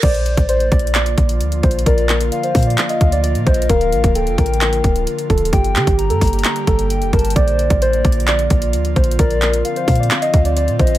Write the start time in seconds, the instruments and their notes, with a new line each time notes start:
0.03 808-style bass A#1, analog synth pad D3 F3 A#3 F4, soft synth lead C5, synth keys D5, kick, closed hi-hat, crash
0.15 closed hi-hat
0.26 closed hi-hat
0.37 808-style bass A1, kick, closed hi-hat
0.49 synth keys C5, soft synth lead D5, closed hi-hat
0.60 closed hi-hat
0.72 808-style bass A#1, synth keys D5, kick, closed hi-hat
0.79 closed hi-hat
0.87 closed hi-hat
0.95 synth keys D5, clap, closed hi-hat
1.06 closed hi-hat
1.18 808-style bass A#1, kick, closed hi-hat
1.29 closed hi-hat
1.40 808-style bass D2, closed hi-hat
1.52 closed hi-hat
1.63 808-style bass A#1, synth keys C5, kick, closed hi-hat
1.71 closed hi-hat
1.79 closed hi-hat
1.86 808-style bass A#1, analog synth pad A#3, synth keys A#4, soft synth lead D5, kick, closed hi-hat
1.98 closed hi-hat
2.09 synth keys A#4, clap, closed hi-hat
2.21 closed hi-hat
2.32 soft synth lead F5, closed hi-hat
2.43 synth keys C5, closed hi-hat
2.55 808-style bass A#2, kick, closed hi-hat, open hi-hat
2.63 closed hi-hat
2.67 synth keys D5, closed hi-hat
2.78 clap, closed hi-hat
2.89 synth keys D#5, closed hi-hat
3.01 808-style bass D2, kick, closed hi-hat
3.12 synth keys D5, closed hi-hat
3.24 soft synth lead D5, synth keys D5, closed hi-hat
3.35 808-style bass A#2, closed hi-hat
3.46 808-style bass A#1, synth keys C5, soft synth lead D#5, kick, closed hi-hat
3.54 closed hi-hat
3.62 closed hi-hat
3.69 808-style bass D1, synth keys A#4, soft synth lead F5, kick, closed hi-hat
3.81 closed hi-hat
3.92 808-style bass A1, closed hi-hat
4.04 808-style bass D1, kick, closed hi-hat
4.15 synth keys A4, soft synth lead G5, closed hi-hat
4.27 808-style bass F1, closed hi-hat
4.38 808-style bass A1, synth keys A#4, kick, closed hi-hat
4.46 closed hi-hat
4.54 closed hi-hat
4.61 synth keys A#4, clap, closed hi-hat
4.73 closed hi-hat
4.84 808-style bass D1, kick, closed hi-hat
4.96 closed hi-hat
5.07 closed hi-hat
5.19 closed hi-hat
5.30 808-style bass D1, synth keys A4, kick, closed hi-hat
5.38 closed hi-hat
5.45 closed hi-hat
5.52 808-style bass G1, analog synth pad G3 A#3 G4, synth keys G4, soft synth lead G5, kick, closed hi-hat
5.64 closed hi-hat
5.75 808-style bass D3, synth keys G4, clap, closed hi-hat
5.87 808-style bass G1, kick, closed hi-hat
5.98 soft synth lead A#5, closed hi-hat
6.10 808-style bass G2, synth keys A4, closed hi-hat
6.21 808-style bass G1, kick, closed hi-hat, open hi-hat
6.27 closed hi-hat
6.33 synth keys G4, closed hi-hat
6.39 closed hi-hat
6.44 clap, closed hi-hat
6.56 closed hi-hat
6.67 808-style bass G1, synth keys A4, kick, closed hi-hat
6.79 closed hi-hat
6.90 soft synth lead G5, closed hi-hat
7.02 808-style bass F1, closed hi-hat
7.13 808-style bass G1, synth keys A#4, soft synth lead A5, kick, closed hi-hat
7.19 closed hi-hat
7.25 closed hi-hat
7.30 closed hi-hat
7.36 808-style bass A#1, analog synth pad F3 A#3 F4, soft synth lead C5, synth keys D5, kick, closed hi-hat
7.48 closed hi-hat
7.59 closed hi-hat
7.70 808-style bass A1, kick, closed hi-hat
7.82 synth keys C5, soft synth lead D5, closed hi-hat
7.93 closed hi-hat
8.05 808-style bass A#1, synth keys D5, kick, closed hi-hat
8.12 closed hi-hat
8.20 closed hi-hat
8.28 synth keys D5, clap, closed hi-hat
8.39 closed hi-hat
8.50 808-style bass A#1, kick, closed hi-hat
8.62 closed hi-hat
8.73 808-style bass D2, closed hi-hat
8.85 closed hi-hat
8.96 808-style bass A#1, synth keys C5, kick, closed hi-hat
9.04 closed hi-hat
9.11 closed hi-hat
9.19 808-style bass A#1, analog synth pad C4, synth keys A#4, soft synth lead D5, kick, closed hi-hat
9.30 closed hi-hat
9.42 synth keys A#4, clap, closed hi-hat
9.53 closed hi-hat
9.65 soft synth lead F5, closed hi-hat
9.76 synth keys C5, closed hi-hat
9.88 808-style bass A#2, kick, closed hi-hat, open hi-hat
9.95 closed hi-hat
10.00 synth keys D5, closed hi-hat
10.11 clap, closed hi-hat
10.22 synth keys D#5, closed hi-hat
10.34 808-style bass D2, kick, closed hi-hat
10.45 synth keys D5, closed hi-hat
10.56 soft synth lead D5, synth keys D5, closed hi-hat
10.68 808-style bass A#2, closed hi-hat
10.79 808-style bass A#1, synth keys C5, soft synth lead D#5, kick, closed hi-hat
10.87 closed hi-hat
10.95 closed hi-hat